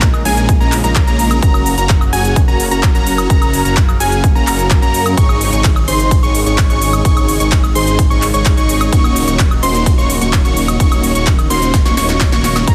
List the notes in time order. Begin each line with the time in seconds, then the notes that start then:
Already playing: A#1 C#3 G#3 A#3 D#4
0.02 kick, clap, closed hi-hat, cabasa
0.14 cabasa, high woodblock
0.25 A#1 G#3 A#3 C#4 F4 G#4 G#5, open hi-hat, cabasa
0.37 closed hi-hat, cabasa
0.49 kick, closed hi-hat, cabasa
0.60 A#1 G#3 A#3 C#4 F4 A#4 A#5, cabasa
0.72 clap, open hi-hat, cabasa
0.84 A#1 G#3 A#3 C#4 F4 A#4 A#5, closed hi-hat, cabasa
0.96 kick, clap, closed hi-hat, cabasa
1.07 A#1 G#3 A#3 C#4 F4 A#4 A#5, closed hi-hat, cabasa
1.19 open hi-hat, cabasa
1.31 closed hi-hat, cabasa, high woodblock
1.42 F#1 C#3 F#3 C#4 F#4 A#4 A#5, kick, closed hi-hat, cabasa
1.54 cabasa, high woodblock
1.66 open hi-hat, cabasa
1.78 F#1 C#4 F#4 A#4 A#5, closed hi-hat, cabasa
1.89 kick, clap, closed hi-hat, cabasa
2.01 cabasa, high woodblock
2.13 F#1 C#4 F#4 G#4 G#5, open hi-hat, cabasa
2.25 closed hi-hat, cabasa
2.36 kick, closed hi-hat, cabasa
2.48 F#1 C#4 F#4 A#4 A#5, cabasa
2.60 open hi-hat, cabasa
2.71 F#1 C#4 F#4 A#4 A#5, closed hi-hat, cabasa
2.83 kick, clap, closed hi-hat, cabasa
2.95 F#1 C#4 F#4 A#4 A#5, closed hi-hat, cabasa
3.07 open hi-hat, cabasa
3.18 closed hi-hat, cabasa, high woodblock
3.30 F#1 C#4 F5 A#5, kick, closed hi-hat, cabasa
3.42 closed hi-hat, cabasa, high woodblock
3.53 open hi-hat, cabasa
3.65 F#1 C#4 F#4 A#4 A#5, closed hi-hat, cabasa
3.77 kick, clap, closed hi-hat, cabasa
3.89 cabasa, high woodblock
4.00 F#1 C#4 F#4 G#4 G#5, open hi-hat, cabasa
4.12 closed hi-hat, cabasa
4.24 kick, closed hi-hat, cabasa
4.35 F#1 C#4 F#4 A#4 A#5, cabasa
4.47 F#1 C#4 F#4 A#4 A#5, clap, open hi-hat, cabasa
4.59 closed hi-hat, cabasa
4.71 kick, clap, closed hi-hat, cabasa
4.82 F#2 C#4 F#4 A#4 A#5, closed hi-hat, cabasa
4.94 open hi-hat, cabasa
5.06 closed hi-hat, cabasa, high woodblock
5.17 G#1 D#3 G#3 D#4 G#4 C#5 C#6, kick, closed hi-hat, ride, cabasa
5.29 cabasa, high woodblock
5.41 open hi-hat, cabasa
5.53 G#1 D#4 G#4 C#5 C#6, closed hi-hat, cabasa
5.64 kick, clap, closed hi-hat, ride, cabasa
5.76 cabasa, high woodblock
5.88 G#1 D#4 G#4 C5 C6, open hi-hat, cabasa
6.00 closed hi-hat, cabasa
6.11 kick, closed hi-hat, ride, cabasa
6.23 G#1 D#4 G#4 C#5 C#6, cabasa
6.35 open hi-hat, cabasa
6.46 G#1 D#4 G#4 C#5 C#6, closed hi-hat, cabasa
6.58 kick, clap, closed hi-hat, ride, cabasa
6.70 G#1 D#4 G#4 C#5 C#6, closed hi-hat, cabasa
6.82 open hi-hat, cabasa
6.93 closed hi-hat, cabasa, high woodblock
7.05 G#1 D#4 G#4 C#5 C#6, kick, closed hi-hat, ride, cabasa
7.17 closed hi-hat, cabasa, high woodblock
7.28 open hi-hat, cabasa
7.40 G#1 D#4 G#4 C#5 C#6, closed hi-hat, cabasa
7.52 kick, clap, closed hi-hat, ride, cabasa
7.64 cabasa, high woodblock
7.75 G#1 D#4 G#4 C5 C6, open hi-hat, cabasa
7.87 closed hi-hat, cabasa
7.99 kick, closed hi-hat, ride, cabasa
8.10 G#1 D#4 G#4 C#5 C#6, cabasa
8.22 clap, open hi-hat, cabasa
8.34 G#1 D#4 G#4 C#5 C#6, closed hi-hat, cabasa
8.46 kick, clap, closed hi-hat, ride, cabasa
8.57 G#1 D#4 G#4 C#5 C#6, closed hi-hat, cabasa
8.69 open hi-hat, cabasa
8.81 closed hi-hat, cabasa, high woodblock
8.92 D#1 F#3 A#3 C#4 D#4 F#4 C#5 C#6, kick, closed hi-hat, ride, cabasa
9.04 cabasa, high woodblock
9.16 open hi-hat, cabasa
9.28 D#1 A#3 C#4 D#4 F#4 C#5 C#6, closed hi-hat, cabasa
9.39 kick, clap, closed hi-hat, ride, cabasa
9.51 cabasa, high woodblock
9.63 D#1 A#3 C#4 D#4 F#4 C5 C6, open hi-hat, cabasa
9.75 closed hi-hat, cabasa
9.86 kick, closed hi-hat, ride, cabasa
9.98 D#1 A#3 C#4 D#4 F#4 C#5 C#6, cabasa
10.10 open hi-hat, cabasa
10.21 D#1 A#3 C#4 D#4 F#4 C#5 C#6, closed hi-hat, cabasa
10.33 kick, clap, closed hi-hat, ride, cabasa
10.45 D#1 A#3 C#4 D#4 F#4 C#5 C#6, closed hi-hat, cabasa
10.57 open hi-hat, cabasa
10.68 closed hi-hat, cabasa, high woodblock
10.80 D#1 A#3 C#4 D#4 F#4 C#5 C#6, kick, closed hi-hat, ride, cabasa
10.92 closed hi-hat, cabasa, high woodblock
11.03 open hi-hat, cabasa
11.15 D#1 A#3 C#4 D#4 F#4 C#5 C#6, closed hi-hat, cabasa
11.27 kick, clap, closed hi-hat, ride, cabasa
11.39 closed hi-hat, cabasa, high woodblock
11.50 D#1 A#3 C#4 D#4 F#4 C5 C6, open hi-hat, cabasa
11.62 closed hi-hat, cabasa
11.74 kick, snare, closed hi-hat, ride, cabasa
11.85 D#1 A#3 C#4 D#4 F#4 C#5 C#6, snare, closed hi-hat, cabasa
11.97 D#1 A#3 C#4 D#4 F#4 C#5 C#6, snare, open hi-hat, cabasa
12.09 snare, closed hi-hat, cabasa
12.21 kick, snare, clap, closed hi-hat, ride, cabasa
12.32 D#1 A#3 C#4 D#4 F#4 C#5 C#6, snare, closed hi-hat, cabasa
12.44 snare, open hi-hat, cabasa
12.56 snare, closed hi-hat, cabasa, high woodblock
12.67 A#1 C#3 G#3 A#3 C#4 F4 A#4 A#5, kick, closed hi-hat, ride, cabasa